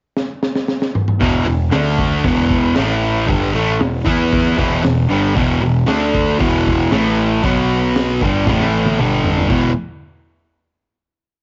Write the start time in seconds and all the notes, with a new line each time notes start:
0.17 snare
0.43 snare
0.55 snare
0.68 snare
0.82 snare
0.95 mid tom
1.08 mid tom
1.20 E1 E2 B2 E3, kick, open hi-hat
1.45 E1 E2 B2
1.71 D2 D3 A3 D4, snare, open hi-hat
1.98 kick
2.24 E1 E2 B2 E3, kick, open hi-hat
2.50 kick
2.75 A1 A2 E3 A3, snare, open hi-hat
3.27 G1 G2 D3 G3, kick, open hi-hat
3.53 A1 A2 E3 A3
3.80 E1 E2 B2, snare, open hi-hat
4.05 E2 E3 B3 E4, kick
4.32 kick, open hi-hat
4.57 E1 E2 B2 E3, kick
4.83 E1 E2 B2, snare, open hi-hat
5.09 G1 G2 D3 G3
5.35 E1 E2 B2 E3, kick, open hi-hat
5.62 E1 E2 B2
5.86 D2 D3 A3 D4, snare, open hi-hat
6.15 kick
6.38 E1 E2 B2 E3, kick, open hi-hat
6.66 kick
6.91 A1 A2 E3 A3, snare, open hi-hat
7.43 B1 B2 F#3 B3, kick, open hi-hat
7.96 snare, open hi-hat
8.21 G1 G2 D3 G3, kick
8.47 A1 A2 E3 A3, kick, snare
8.60 snare
8.85 high tom
8.99 G1 G2 D3 G3, mid tom
9.24 floor tom
9.37 floor tom
9.50 E1 E2 B2 E3, kick, crash